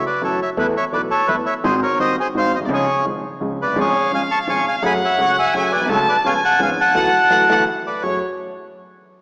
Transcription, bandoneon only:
0.06 B4 D5
0.24 A4 C#5
0.42 C#5 E5
0.59 E4 B4
0.77 C#5 E5
0.93 B4 D5
1.11 A4 C#5
1.28 E4 B4
1.46 C#5 E5
1.64 G#4 C5
1.82 A#4 C#5
1.99 C5 D#5
2.20 G#4 C5
2.37 C5 F5
2.54 C5 D#5
2.65 D5
2.73 G#4 C#5
3.62 B4 D5
3.80 G#4 C#5
4.14 F5 G#5
4.31 A5 C#6
4.50 G#5 C#6
4.68 F5 G#5
4.86 G#5 B5
5.04 C#5 E5
5.21 C#5 F#5
5.39 E5 G#5
5.56 C#5 E5
5.72 B4 D5
5.91 A4 C#5
6.08 B4 D5
6.26 C#5 F5
6.44 F#5 A5
6.62 F5 G#5
6.80 F#5 A5
7.87 B4 D5
8.02 C#5

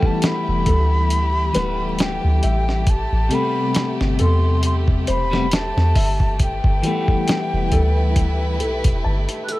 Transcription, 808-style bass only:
0.48 E1
0.67 D2
1.56 D1
2.24 D2
2.44 A1
3.12 A1
4.01 G1
4.21 E2
5.09 E1
5.77 E2
5.96 G1
6.65 G1
7.54 E1
7.72 D2
8.62 B1
8.85 E1
9.06 G1

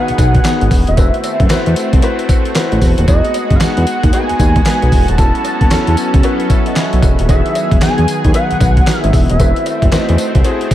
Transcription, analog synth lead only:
Already playing: F#5
0.88 E5
3.08 D#5
3.56 F5
3.61 F#5
4.14 G#5
5.09 A5
7.30 E5
7.82 G#5
8.35 F#5
9.00 E5
9.31 E5
9.98 D#5

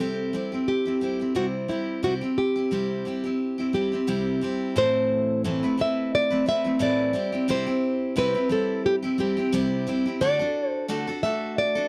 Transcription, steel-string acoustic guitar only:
0.00 C3 G3 C4 E4 G4
0.33 G3 C4 E4 G4
0.52 C4 E4 G4
0.85 C4 E4 G4
1.01 G3 C4 E4 G4
1.19 C4 E4 G4
1.35 C3 G3 C4 E4
1.68 G3 C4 E4 G4
2.03 C3 G3 C4 E4 G4
2.21 C4 E4 G4
2.56 C4 E4 G4
2.71 C3 G3 C4 E4 G4
3.05 G3 C4 E4 G4
3.24 C4 E4 G4
3.58 C4 E4 G4
3.73 G3 C4 E4 G4
3.92 C4 E4 G4
4.07 C3 G3 C4 E4 G4
4.41 G3 C4 E4 G4
4.76 A2 E3 A3 C4 E4
5.44 A2 E3 A3 C4 E4 B4
5.63 A3 C4 E4 B4
5.78 A3 C4 E4 B4
6.30 A3 C4 E4 B4
6.46 A3 C4 E4 B4
6.64 A3 C4 E4 B4
6.79 A2 E3 A3 C4 E4 B4
7.13 G3 C4 E4 G4
7.32 C4 E4 G4
7.48 C3 G3 C4 E4 G4
7.66 C4 E4 G4
8.16 C3 G3 C4 E4 G4
8.34 C4 E4 G4
8.49 G3 C4 E4 G4
9.03 C4 E4 G4
9.18 G3 C4 E4 G4
9.37 C4 E4 G4
9.52 C3 G3 C4 E4 G4
9.87 G3 C4 E4 G4
10.06 C4 E4 G4
10.21 D3 A3 D4 F#4 A4
10.39 D4 F#4 A4
10.88 D3 A3 D4 F#4 A4
11.07 D4 F#4 A4
11.23 A3 D4 F#4 A4
11.75 D4 F#4 A4

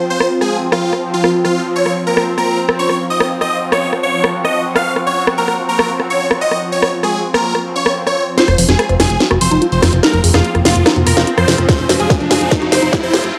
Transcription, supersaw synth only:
0.10 C5
0.41 G#4
0.72 F4
1.14 F4
1.45 F4
1.76 C#5
2.07 A#4
2.38 A#4
2.79 C#5
3.10 D#5
3.41 D#5
3.72 C#5
4.03 C#5
4.45 D#5
4.76 F5
5.07 C#5
5.38 A#4
5.69 A#4
6.10 C#5
6.41 D#5
6.72 C#5
7.03 G#4
7.34 A#4
7.76 C#5
8.07 C#5
8.38 C5
8.69 G#4
9.00 G#4
9.41 C5
9.72 C5
10.03 A#4
10.34 F4
10.65 F4
11.07 A#4
11.38 C5
11.69 C5
12.00 G#4
12.31 G#4
12.72 C5
13.03 C5

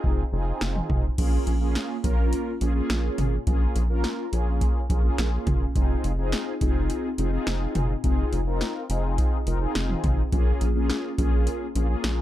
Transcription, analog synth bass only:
0.04 F1
0.33 F1
0.61 F1
0.90 F1
1.18 A#1
1.47 A#1
2.04 A#1
2.61 A#1
2.90 A#1
3.18 G#1
3.47 A#1
3.76 A#1
4.33 A#1
4.90 A#1
5.18 A#1
5.47 F#1
5.76 F1
6.04 F1
6.61 F1
7.18 F1
7.47 F1
7.76 F#1
8.04 F1
8.33 F1
8.90 F1
9.47 F1
9.75 F1
10.04 G#1
10.33 A#1
10.61 A#1
11.18 A#1
11.76 A#1
12.04 A#1

